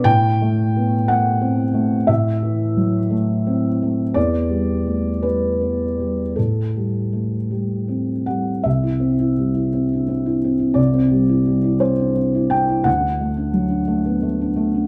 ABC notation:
X:1
M:6/8
L:1/16
Q:3/8=57
K:Ador
V:1 name="Felt piano"
g6 f6 | e6 z6 | d6 B6 | A8- A2 f2 |
e12 | d6 c4 g2 | f12 |]
V:2 name="Felt piano"
A,,2 A,2 B,2 A,2 C2 A,2 | A,,2 E,2 F,2 A,2 C2 A,2 | E,,2 G,2 A,2 G,2 B,2 G,2 | A,,2 G,2 A,2 G,2 C2 G,2 |
C,, E C E G, E C D C E C E | C,, C G, E G, E C D C E C E | D,, D A, D F, D A, B, A, D A, D |]